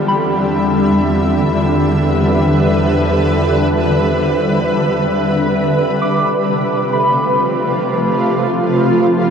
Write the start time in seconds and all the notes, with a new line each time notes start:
Already playing: E2 D3 G3 C4 F4 E5 G5
0.08 B5
1.22 B4
5.68 C3
6.02 D6
6.30 F4
6.41 A3
6.51 F3
6.93 B5